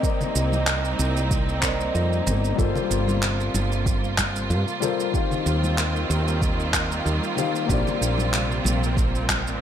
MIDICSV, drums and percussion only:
0, 0, Header, 1, 2, 480
1, 0, Start_track
1, 0, Key_signature, -2, "minor"
1, 0, Tempo, 638298
1, 26, Time_signature, 4, 2, 24, 8
1, 7227, End_track
2, 0, Start_track
2, 0, Title_t, "Drums"
2, 24, Note_on_c, 9, 36, 111
2, 30, Note_on_c, 9, 82, 44
2, 99, Note_off_c, 9, 36, 0
2, 105, Note_off_c, 9, 82, 0
2, 155, Note_on_c, 9, 64, 76
2, 159, Note_on_c, 9, 82, 22
2, 231, Note_off_c, 9, 64, 0
2, 234, Note_off_c, 9, 82, 0
2, 268, Note_on_c, 9, 82, 73
2, 343, Note_off_c, 9, 82, 0
2, 392, Note_on_c, 9, 63, 81
2, 399, Note_on_c, 9, 82, 32
2, 467, Note_off_c, 9, 63, 0
2, 474, Note_off_c, 9, 82, 0
2, 502, Note_on_c, 9, 39, 72
2, 507, Note_on_c, 9, 82, 39
2, 577, Note_off_c, 9, 39, 0
2, 582, Note_off_c, 9, 82, 0
2, 638, Note_on_c, 9, 82, 21
2, 713, Note_off_c, 9, 82, 0
2, 748, Note_on_c, 9, 82, 77
2, 823, Note_off_c, 9, 82, 0
2, 878, Note_on_c, 9, 82, 34
2, 953, Note_off_c, 9, 82, 0
2, 984, Note_on_c, 9, 36, 124
2, 986, Note_on_c, 9, 82, 44
2, 1059, Note_off_c, 9, 36, 0
2, 1061, Note_off_c, 9, 82, 0
2, 1119, Note_on_c, 9, 82, 21
2, 1195, Note_off_c, 9, 82, 0
2, 1222, Note_on_c, 9, 39, 76
2, 1224, Note_on_c, 9, 36, 62
2, 1227, Note_on_c, 9, 82, 78
2, 1297, Note_off_c, 9, 39, 0
2, 1299, Note_off_c, 9, 36, 0
2, 1302, Note_off_c, 9, 82, 0
2, 1358, Note_on_c, 9, 82, 32
2, 1433, Note_off_c, 9, 82, 0
2, 1467, Note_on_c, 9, 82, 45
2, 1542, Note_off_c, 9, 82, 0
2, 1600, Note_on_c, 9, 82, 22
2, 1675, Note_off_c, 9, 82, 0
2, 1703, Note_on_c, 9, 64, 70
2, 1708, Note_on_c, 9, 82, 77
2, 1778, Note_off_c, 9, 64, 0
2, 1783, Note_off_c, 9, 82, 0
2, 1839, Note_on_c, 9, 82, 32
2, 1915, Note_off_c, 9, 82, 0
2, 1944, Note_on_c, 9, 36, 108
2, 1949, Note_on_c, 9, 82, 43
2, 2019, Note_off_c, 9, 36, 0
2, 2024, Note_off_c, 9, 82, 0
2, 2072, Note_on_c, 9, 64, 75
2, 2077, Note_on_c, 9, 63, 58
2, 2080, Note_on_c, 9, 82, 20
2, 2147, Note_off_c, 9, 64, 0
2, 2152, Note_off_c, 9, 63, 0
2, 2155, Note_off_c, 9, 82, 0
2, 2189, Note_on_c, 9, 82, 72
2, 2265, Note_off_c, 9, 82, 0
2, 2315, Note_on_c, 9, 63, 77
2, 2323, Note_on_c, 9, 82, 29
2, 2390, Note_off_c, 9, 63, 0
2, 2398, Note_off_c, 9, 82, 0
2, 2425, Note_on_c, 9, 39, 74
2, 2430, Note_on_c, 9, 82, 41
2, 2501, Note_off_c, 9, 39, 0
2, 2506, Note_off_c, 9, 82, 0
2, 2560, Note_on_c, 9, 82, 22
2, 2635, Note_off_c, 9, 82, 0
2, 2667, Note_on_c, 9, 63, 85
2, 2667, Note_on_c, 9, 82, 72
2, 2742, Note_off_c, 9, 63, 0
2, 2742, Note_off_c, 9, 82, 0
2, 2799, Note_on_c, 9, 82, 31
2, 2874, Note_off_c, 9, 82, 0
2, 2904, Note_on_c, 9, 36, 123
2, 2909, Note_on_c, 9, 82, 41
2, 2979, Note_off_c, 9, 36, 0
2, 2984, Note_off_c, 9, 82, 0
2, 3039, Note_on_c, 9, 82, 20
2, 3115, Note_off_c, 9, 82, 0
2, 3142, Note_on_c, 9, 39, 68
2, 3142, Note_on_c, 9, 63, 83
2, 3144, Note_on_c, 9, 36, 60
2, 3147, Note_on_c, 9, 82, 74
2, 3217, Note_off_c, 9, 39, 0
2, 3217, Note_off_c, 9, 63, 0
2, 3219, Note_off_c, 9, 36, 0
2, 3222, Note_off_c, 9, 82, 0
2, 3278, Note_on_c, 9, 82, 34
2, 3353, Note_off_c, 9, 82, 0
2, 3387, Note_on_c, 9, 82, 44
2, 3462, Note_off_c, 9, 82, 0
2, 3518, Note_on_c, 9, 82, 21
2, 3594, Note_off_c, 9, 82, 0
2, 3625, Note_on_c, 9, 64, 67
2, 3627, Note_on_c, 9, 82, 76
2, 3700, Note_off_c, 9, 64, 0
2, 3703, Note_off_c, 9, 82, 0
2, 3760, Note_on_c, 9, 82, 33
2, 3835, Note_off_c, 9, 82, 0
2, 3864, Note_on_c, 9, 36, 106
2, 3870, Note_on_c, 9, 82, 42
2, 3939, Note_off_c, 9, 36, 0
2, 3945, Note_off_c, 9, 82, 0
2, 3996, Note_on_c, 9, 64, 66
2, 4001, Note_on_c, 9, 82, 21
2, 4071, Note_off_c, 9, 64, 0
2, 4076, Note_off_c, 9, 82, 0
2, 4108, Note_on_c, 9, 82, 66
2, 4183, Note_off_c, 9, 82, 0
2, 4236, Note_on_c, 9, 63, 79
2, 4242, Note_on_c, 9, 82, 32
2, 4311, Note_off_c, 9, 63, 0
2, 4317, Note_off_c, 9, 82, 0
2, 4347, Note_on_c, 9, 39, 67
2, 4352, Note_on_c, 9, 82, 42
2, 4422, Note_off_c, 9, 39, 0
2, 4427, Note_off_c, 9, 82, 0
2, 4484, Note_on_c, 9, 82, 20
2, 4559, Note_off_c, 9, 82, 0
2, 4591, Note_on_c, 9, 82, 74
2, 4667, Note_off_c, 9, 82, 0
2, 4722, Note_on_c, 9, 82, 30
2, 4797, Note_off_c, 9, 82, 0
2, 4825, Note_on_c, 9, 36, 111
2, 4831, Note_on_c, 9, 82, 42
2, 4900, Note_off_c, 9, 36, 0
2, 4906, Note_off_c, 9, 82, 0
2, 4962, Note_on_c, 9, 82, 19
2, 5037, Note_off_c, 9, 82, 0
2, 5065, Note_on_c, 9, 36, 59
2, 5065, Note_on_c, 9, 39, 67
2, 5070, Note_on_c, 9, 82, 72
2, 5140, Note_off_c, 9, 36, 0
2, 5141, Note_off_c, 9, 39, 0
2, 5146, Note_off_c, 9, 82, 0
2, 5202, Note_on_c, 9, 82, 29
2, 5277, Note_off_c, 9, 82, 0
2, 5312, Note_on_c, 9, 82, 41
2, 5387, Note_off_c, 9, 82, 0
2, 5442, Note_on_c, 9, 82, 21
2, 5517, Note_off_c, 9, 82, 0
2, 5543, Note_on_c, 9, 64, 70
2, 5550, Note_on_c, 9, 82, 73
2, 5618, Note_off_c, 9, 64, 0
2, 5625, Note_off_c, 9, 82, 0
2, 5682, Note_on_c, 9, 82, 31
2, 5757, Note_off_c, 9, 82, 0
2, 5784, Note_on_c, 9, 36, 109
2, 5791, Note_on_c, 9, 82, 41
2, 5860, Note_off_c, 9, 36, 0
2, 5866, Note_off_c, 9, 82, 0
2, 5918, Note_on_c, 9, 63, 54
2, 5919, Note_on_c, 9, 64, 66
2, 5923, Note_on_c, 9, 82, 20
2, 5993, Note_off_c, 9, 63, 0
2, 5994, Note_off_c, 9, 64, 0
2, 5998, Note_off_c, 9, 82, 0
2, 6034, Note_on_c, 9, 82, 68
2, 6109, Note_off_c, 9, 82, 0
2, 6150, Note_on_c, 9, 63, 78
2, 6164, Note_on_c, 9, 82, 30
2, 6225, Note_off_c, 9, 63, 0
2, 6239, Note_off_c, 9, 82, 0
2, 6268, Note_on_c, 9, 39, 74
2, 6273, Note_on_c, 9, 82, 40
2, 6343, Note_off_c, 9, 39, 0
2, 6348, Note_off_c, 9, 82, 0
2, 6404, Note_on_c, 9, 82, 21
2, 6480, Note_off_c, 9, 82, 0
2, 6501, Note_on_c, 9, 63, 73
2, 6514, Note_on_c, 9, 82, 74
2, 6576, Note_off_c, 9, 63, 0
2, 6589, Note_off_c, 9, 82, 0
2, 6643, Note_on_c, 9, 82, 30
2, 6719, Note_off_c, 9, 82, 0
2, 6744, Note_on_c, 9, 36, 121
2, 6753, Note_on_c, 9, 82, 41
2, 6820, Note_off_c, 9, 36, 0
2, 6829, Note_off_c, 9, 82, 0
2, 6883, Note_on_c, 9, 82, 20
2, 6958, Note_off_c, 9, 82, 0
2, 6985, Note_on_c, 9, 36, 62
2, 6988, Note_on_c, 9, 39, 75
2, 6988, Note_on_c, 9, 63, 84
2, 6993, Note_on_c, 9, 82, 70
2, 7060, Note_off_c, 9, 36, 0
2, 7063, Note_off_c, 9, 39, 0
2, 7063, Note_off_c, 9, 63, 0
2, 7068, Note_off_c, 9, 82, 0
2, 7124, Note_on_c, 9, 82, 32
2, 7199, Note_off_c, 9, 82, 0
2, 7227, End_track
0, 0, End_of_file